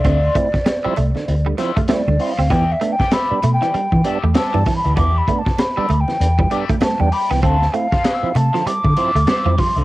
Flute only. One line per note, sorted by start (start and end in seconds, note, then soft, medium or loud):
0.00 1.46 D5 loud
1.91 2.33 D5 medium
2.31 2.52 F5 medium
2.51 2.74 G5 loud
2.72 2.94 E5 medium
2.93 3.15 G5 medium
3.13 3.53 B5 loud
3.54 4.11 G5 loud
4.36 4.74 A5 loud
4.76 4.96 B5 medium
4.97 5.19 D6 loud
5.18 5.40 B5 loud
5.38 5.61 A5 loud
5.59 6.02 B5 medium
6.00 6.62 G5 loud
6.83 7.02 A5 loud
7.00 7.15 G5 medium
7.13 7.33 B5 medium
7.31 7.43 G5 medium
7.44 7.76 A5 loud
7.74 8.38 F5 loud
8.36 8.68 A5 medium
8.67 9.61 D6 loud
9.59 9.84 C6 medium